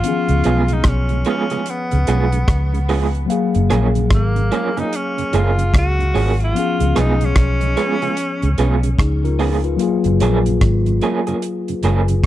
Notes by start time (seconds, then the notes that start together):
Already playing: F4
0.02 D#3 B3 C#4, closed hi-hat
0.08 F3 G#4
0.29 C#2 C#3 G#3, closed hi-hat
0.44 B1 G#3 B3 C#4 F4 G#4, closed hi-hat
0.68 C#3 G#3, closed hi-hat
0.73 D#4
0.84 B1, kick, cross-stick, closed hi-hat
0.88 C#4
1.09 C#3 G#3, closed hi-hat
1.25 G#3 B3 C#4 F4 G#4, closed hi-hat
1.30 C#4
1.50 C#3 G#3 B3 F4 G#4, closed hi-hat
1.66 closed hi-hat
1.70 B3
1.91 C#2 C#3 G#3, closed hi-hat
2.07 B1 G#3 B3 C#4 F4 G#4, closed hi-hat
2.32 C#3 G#3, closed hi-hat
2.48 C#2, kick, cross-stick, closed hi-hat
2.73 C#3 G#3, closed hi-hat
2.89 G#3 B3 C#4 F4 G#4, open hi-hat
3.15 closed hi-hat
3.26 F#3 A#3
3.30 G#4 F5, closed hi-hat
3.54 F#1 F#2 C#3, closed hi-hat
3.70 A#1 F3 G#3 A#3 C#4 F4 G#4, cross-stick, closed hi-hat
3.95 F#2 C#3, closed hi-hat
4.10 G#1 A#3, kick, cross-stick, closed hi-hat
4.35 F#2 C#3, closed hi-hat
4.51 F3 G#3 A#3 C#4 F4 G#4, closed hi-hat
4.77 F#2 C#3 F3 A#3 C#4 D#4 G#4, closed hi-hat
4.93 C#4, closed hi-hat
5.18 F#2 C#3, closed hi-hat
5.33 F#1 F3 G#3 A#3 C#4 F4 G#4, closed hi-hat
5.58 F#2 C#3, closed hi-hat
5.74 C#2, kick, cross-stick, closed hi-hat
5.78 F#4
5.99 F#2 C#3, closed hi-hat
6.14 G#1 F3 G#3 A#3 C#4 F4 G#4, open hi-hat
6.40 F4, closed hi-hat
6.53 F3 B3, closed hi-hat
6.57 C#4 G#4
6.80 C#2 C#3 G#3, closed hi-hat
6.95 B1 G#3 B3 C#4 F4 G#4, cross-stick, closed hi-hat
7.00 D#4
7.20 C#3 G#3, closed hi-hat
7.25 C#4
7.36 B1, kick, cross-stick, closed hi-hat
7.61 C#3 G#3, closed hi-hat
7.76 G#3 B3 C#4 F4 G#4, closed hi-hat
8.02 C#3 G#3 B3 F4 G#4, closed hi-hat
8.17 closed hi-hat
8.42 C#2 C#3 G#3, closed hi-hat
8.58 B1 G#3 B3 C#4 F4 G#4, closed hi-hat
8.83 C#3 G#3, closed hi-hat
8.99 C#2 D#4 G#4, kick, cross-stick, closed hi-hat
9.23 C#3 G#3 F4 A#4, closed hi-hat
9.39 G#3 B3 C#4 F4 G#4, open hi-hat
9.64 F4 B4, closed hi-hat
9.76 F#3 A#3, closed hi-hat
9.81 F4 G#4
10.04 F#1 F#2 C#3, closed hi-hat
10.20 A#1 F3 G#3 A#3 C#4 F4 G#4, closed hi-hat
10.46 F#2 C#3, closed hi-hat
10.61 G#1, kick, cross-stick, closed hi-hat
10.86 F#2 C#3, closed hi-hat
11.01 F3 G#3 A#3 C#4 F4 G#4, closed hi-hat
11.27 F#2 C#3 F3 A#3 C#4 G#4, closed hi-hat
11.42 closed hi-hat
11.68 F#2 C#3, closed hi-hat
11.83 F#1 F3 G#3 A#3 C#4 F4 G#4, closed hi-hat
12.08 F#2 C#3, closed hi-hat